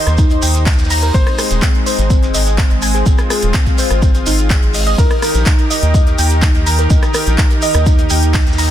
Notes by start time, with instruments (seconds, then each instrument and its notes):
Already playing: analog synth pad D#3 D#4 G4 C5
0.07 analog synth bass D#2, cross-stick, closed hi-hat, shekere
0.18 synth pluck D#4, kick, closed hi-hat, shekere, shaker
0.30 closed hi-hat, shekere
0.42 analog synth bass D#2, synth pluck G5, open hi-hat, shaker, shekere
0.55 closed hi-hat, shekere
0.66 synth pluck D#4, kick, snare, clap, closed hi-hat, shekere, shaker
0.72 snare, shaker
0.78 analog synth bass D#2, snare, closed hi-hat, shekere, shaker
0.84 snare, shaker
0.90 synth pluck A#5, open hi-hat, shekere
1.02 synth pluck A#4, closed hi-hat, shekere
1.14 analog synth bass G#1, analog synth pad G#3 C4, synth pluck C4, grand piano C5, kick, closed hi-hat, shekere, shaker
1.27 cross-stick, closed hi-hat, shekere
1.38 synth pluck G#4, cross-stick, open hi-hat, shaker, shekere
1.50 analog synth bass D#1, closed hi-hat, shekere
1.62 synth pluck C4, kick, snare, clap, closed hi-hat, shaker, shekere
1.74 closed hi-hat, shekere
1.86 synth pluck C5, open hi-hat, shaker, shekere
1.98 analog synth bass G#1, closed hi-hat, shekere
2.10 synth pluck C4, kick, closed hi-hat, shaker, shekere
2.23 snare, closed hi-hat, shekere
2.34 analog synth bass G#1, synth pluck D#5, open hi-hat, shaker, shekere
2.46 snare, closed hi-hat, shekere
2.58 synth pluck C4, kick, snare, clap, closed hi-hat, shekere, shaker
2.70 analog synth bass G#1, closed hi-hat, shekere
2.82 synth pluck G#5, open hi-hat, shekere, shaker
2.94 synth pluck G#4, snare, closed hi-hat, shekere
3.06 synth pluck C4, analog synth pad F4, kick, closed hi-hat, shekere, shaker
3.18 cross-stick, snare, closed hi-hat, shekere
3.30 synth pluck G#4, cross-stick, open hi-hat, shaker, shekere
3.42 analog synth bass D#1, closed hi-hat, shekere
3.54 synth pluck C4, kick, snare, clap, closed hi-hat, shaker, shekere
3.66 kick, closed hi-hat, shekere
3.78 synth pluck C5, open hi-hat, shekere, shaker
3.90 analog synth bass G#1, cross-stick, closed hi-hat, shekere
4.02 synth pluck C4, kick, closed hi-hat, shekere, shaker
4.14 closed hi-hat, shekere
4.26 analog synth bass G#1, synth pluck D#4, open hi-hat, shaker, shekere
4.39 closed hi-hat, shekere
4.50 synth pluck G#4, kick, snare, clap, closed hi-hat, shaker, shekere
4.62 analog synth bass G#1, closed hi-hat, shekere
4.74 synth pluck D#5, open hi-hat, shekere
4.87 synth pluck D#5, closed hi-hat, shekere
4.98 analog synth bass D#2, analog synth pad D#3 D#4 G4 A#4, synth pluck D#4, grand piano A#4, kick, closed hi-hat, shekere, shaker
5.10 cross-stick, closed hi-hat, shekere
5.22 synth pluck A#4, cross-stick, open hi-hat, shaker, shekere
5.34 analog synth bass A#1, closed hi-hat, shekere
5.46 synth pluck D#4, kick, snare, clap, closed hi-hat, shaker, shekere
5.59 closed hi-hat, shekere
5.70 synth pluck D#5, open hi-hat, shaker, shekere
5.82 analog synth bass D#2, closed hi-hat, shekere
5.94 synth pluck D#4, kick, closed hi-hat, shaker, shekere
6.06 snare, closed hi-hat, shekere
6.18 analog synth bass D#2, synth pluck G5, open hi-hat, shaker, shekere
6.31 snare, closed hi-hat, shekere
6.42 synth pluck D#4, kick, snare, clap, closed hi-hat, shekere, shaker
6.54 analog synth bass D#2, closed hi-hat, shekere
6.66 synth pluck A#5, open hi-hat, shaker, shekere
6.78 synth pluck A#4, snare, closed hi-hat, shekere
6.90 analog synth bass D#2, synth pluck D#4, kick, closed hi-hat, shaker, shekere
7.02 cross-stick, snare, closed hi-hat, shekere
7.14 synth pluck A#4, cross-stick, open hi-hat, shekere, shaker
7.27 analog synth bass A#1, closed hi-hat, shekere
7.38 synth pluck D#4, kick, snare, clap, closed hi-hat, shekere, shaker
7.50 closed hi-hat, shekere
7.62 synth pluck D#5, open hi-hat, shaker, shekere
7.74 analog synth bass D#2, cross-stick, closed hi-hat, shekere
7.86 synth pluck D#4, kick, closed hi-hat, shekere, shaker
7.98 closed hi-hat, shekere
8.10 analog synth bass D#2, synth pluck G5, open hi-hat, shekere, shaker
8.22 closed hi-hat, shekere
8.34 synth pluck D#4, kick, snare, clap, closed hi-hat, shaker, shekere
8.41 snare, shaker
8.46 analog synth bass D#2, snare, closed hi-hat, shekere, shaker
8.53 snare, shaker
8.58 synth pluck A#5, open hi-hat, shekere